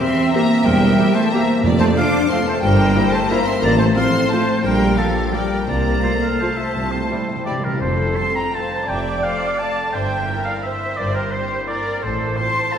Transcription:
Already playing: harp E2 E3 G3 A#3 C4 E4 C5 E5 G5
0.00 cello section C4, french horn section C4, harp G4, viola section G4, flute E5, violin section E5 C6
0.08 harp A#4
0.18 harp C5
0.26 harp G5
0.32 french horn section A#3, cello section A#3, viola section A#3 G4, harp C5, flute E5, violin section A#5
0.42 harp G4
0.50 harp C4
0.58 harp A#3
0.63 tuba E1, double bass section E2, harp E2, french horn section G3, cello section G3, flute A#4, violin section G5
0.74 harp E3
0.82 harp A#3
0.91 harp C4
0.99 viola section A#3 G4, harp G4
1.08 harp A#4
1.13 french horn section A3, cello section A3, flute C5, harp C5, violin section A5
1.25 harp G5
1.31 french horn section A#3, cello section A#3, viola section A#3 G4, harp C5, flute E5, violin section A#5
1.41 harp G4
1.49 harp C4
1.57 harp A#3
1.63 tuba F1, double bass section F2, timpani F2, harp F2, violin section D5
1.72 harp C3
1.78 french horn section A3, cello section A3, harp A3, flute C5, violin section A5
1.87 harp C4
1.95 viola section A3 F4, french horn section D4, cello section D4, harp F4, violin section C5 D6, flute F5
2.04 harp A4
2.13 harp C5
2.22 harp F5
2.29 viola section A3 F4, french horn section C4, cello section C4, violin section A4 C6, harp C5, flute F5
2.39 harp F4
2.46 french horn section A3, cello section A3, harp C4, flute C5, violin section A5
2.55 harp A3
2.61 tuba G1, double bass section G1, harp G2, french horn section G3, cello section G3, flute A#4, violin section C5 G5
2.70 harp G3
2.78 harp A#3
2.87 harp C4
2.95 viola section A#3 E4, harp E4
3.04 harp A#4
3.10 french horn section A3, cello section A3, harp C5, flute C5, violin section A5
3.21 harp E5
3.28 french horn section A#3, cello section A#3, viola section A#3 E4, harp C5, flute E5, violin section A#5
3.37 harp E4
3.45 french horn section C4, harp C4, cello section C4, flute E5, violin section C6
3.54 harp A#3
3.61 tuba A1, double bass section A1, harp A2, french horn section A#3, cello section A#3, violin section C5 A#5, flute D5
3.70 harp F3
3.78 french horn section A3, harp A3, cello section A3, flute C5, violin section A5
3.87 harp C4
3.95 viola section A3 F4, french horn section C4, cello section C4, harp F4, flute F5, violin section C6
4.05 harp A4
4.13 harp C5
4.22 harp F5
4.30 french horn section A3, viola section A3 F4, cello section A3, harp C5, flute C5, violin section A5
4.39 harp F4
4.47 harp C4
4.55 harp A3
4.62 tuba A#1, double bass section A#1, harp A#2, french horn section G3, cello section G3, violin section A#4 G5, flute A#4
4.71 harp A#3
4.80 harp G3
4.88 harp D4
4.97 french horn section F3, cello section F3, viola section G3 G4, harp G4, flute A4, violin section F5
5.05 harp D4
5.15 harp D5
5.23 harp G5
5.31 french horn section G3, viola section G3 G4, cello section G3, flute A#4, harp D5, violin section D5 G5
5.41 harp G4
5.50 harp D4
5.58 harp G3
5.66 tuba C2, double bass section C2, harp C3, french horn section A#3, cello section A#3, violin section C5 A#5, flute D5
5.75 harp A3
5.84 harp C4
5.94 harp F4
6.03 viola section A3 F4, harp A4, oboe C5
6.13 harp C5
6.21 oboe F5, harp F5
6.31 harp A5
6.40 french horn section A3, viola section A3 F4, cello section A3, flute C5, harp F5, violin section A5
6.49 harp A4
6.57 harp F4, oboe E5
6.65 harp C4
6.74 double bass section C2, tuba C2, harp C3
6.82 timpani C3, harp G3
6.91 harp C4, oboe C5
6.97 timpani C3
7.01 harp E4
7.10 timpani C3, viola section G3 E4, harp G4
7.18 timpani C3, harp C5
7.28 timpani C3, harp E5
7.36 timpani C3, harp G5
7.44 timpani C3, viola section G3 E4, violin section G4 D5, oboe D5, flute D5, harp E5
7.51 timpani C3, harp G4
7.59 timpani C3
7.63 timpani C3, harp E4, violin section G4 A#4, flute A#4, oboe A#4
7.71 timpani C3, harp C4
7.79 double bass section F1, harp F2, cello section F2, timpani F2, viola section A4, violin section A4 C5, flute C5, oboe C5
7.97 harp A3
8.15 french horn section A3 C4, harp C4, violin section A5 C6, oboe C6, flute C6
8.35 harp F4, violin section G5 A#5, oboe A#5, flute A#5
8.53 french horn section A3 C4, harp A4, viola section C5, violin section F5 A5, flute A5, oboe A5
8.72 harp C4
8.87 double bass section F1, harp F2, cello section F2, viola section D5, violin section E5 G5, oboe G5, flute G5
9.05 harp A3
9.22 french horn section A3 C4, harp C4, violin section C5 F5, flute F5, oboe F5
9.40 harp F4
9.58 french horn section A3 C4, harp A4, violin section F5 A5, oboe A5, flute A5
9.75 harp C4
9.92 double bass section G1, harp G2, cello section G2, viola section C5, violin section E5 G5, oboe G5, flute G5
10.10 harp A#3
10.27 french horn section A#3 E4, harp C4, viola section A#4
10.44 harp E4, violin section D5 F5, oboe F5, flute F5
10.63 french horn section A#3 E4, harp A#4, violin section C5 E5, viola section C5, oboe E5, flute E5
10.82 harp C4
10.97 double bass section G1, cello section G2, harp G2, violin section A#4 D5, oboe D5, flute D5
11.14 harp A#3, violin section G4 A#4, oboe A#4, flute A#4
11.32 french horn section A#3 E4, harp C4, violin section G4 C5, oboe C5, flute C5
11.52 harp E4
11.67 french horn section A#3 E4, viola section A#4, violin section A#4 D5, harp A#4, oboe D5, flute D5
11.86 harp C4
12.02 double bass section A1, harp A2, cello section A2, viola section A4, violin section A4 C5, flute C5, oboe C5
12.20 harp A3
12.36 french horn section A3 F4, harp C4, viola section C5, violin section A5 C6, flute C6, oboe C6
12.55 harp F4
12.71 french horn section A3 F4, harp A4, violin section F5 A5, oboe A5, flute A5

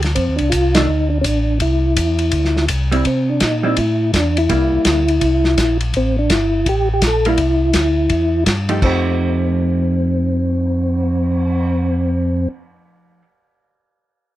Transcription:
Already playing: tonewheel organ D2
0.02 snare, ride
0.15 tonewheel organ F2 C4, kick, ride
0.28 tonewheel organ D#2
0.36 tonewheel organ C2 D4, ride
0.50 tonewheel organ C2 F4, kick, hi-hat pedal, ride
0.75 hollow-body jazz guitar D#3 A3 D4, tonewheel organ D#4, snare, ride
0.89 tonewheel organ D2
1.10 tonewheel organ D4
1.21 tonewheel organ A1 C#4 D4, kick, hi-hat pedal, ride
1.60 tonewheel organ C2 E4, kick, ride
1.97 tonewheel organ E2, kick, hi-hat pedal, ride
2.19 ride
2.31 tonewheel organ D2, kick, ride
2.45 snare
2.57 snare
2.68 tonewheel organ C2, kick, hi-hat pedal, ride
2.92 hollow-body jazz guitar G3 C4 E4, ride
3.05 tonewheel organ C3 C4, kick, ride
3.30 tonewheel organ D4
3.40 tonewheel organ A#2 D#4, kick, snare, hi-hat pedal, ride
3.63 hollow-body jazz guitar G3 C4 E4
3.77 tonewheel organ A2 E4, kick, ride
4.13 tonewheel organ E2 D4, kick, snare, hi-hat pedal, ride
4.37 tonewheel organ E4, ride
4.49 tonewheel organ C2, hollow-body jazz guitar G3 A#3 E4, kick, ride
4.72 tonewheel organ C2
4.85 tonewheel organ D2, kick, snare, hi-hat pedal, ride
5.08 ride
5.21 tonewheel organ C2, kick, ride
5.44 snare
5.58 tonewheel organ A#1, kick, snare, hi-hat pedal, ride
5.81 ride
5.94 tonewheel organ A1 C4, kick, ride
6.19 tonewheel organ D4
6.30 tonewheel organ G1 E4, kick, snare, hi-hat pedal, ride
6.66 tonewheel organ A1 G4, kick, ride
6.94 tonewheel organ G4
7.02 tonewheel organ A#1, kick, snare, hi-hat pedal, ride
7.07 tonewheel organ A4
7.25 hollow-body jazz guitar G3 A#3 E4, tonewheel organ E4, ride
7.38 tonewheel organ C2, kick, ride
7.73 tonewheel organ D2, kick, snare, hi-hat pedal, ride
8.10 tonewheel organ E2, kick, ride
8.46 tonewheel organ G2, kick, snare, hi-hat pedal, ride
8.69 hollow-body jazz guitar F3 A3 D#4 G4, ride
8.82 tonewheel organ F2 C4, hollow-body jazz guitar F3 A3 D#4 G4, kick, crash
9.05 cymbal swell

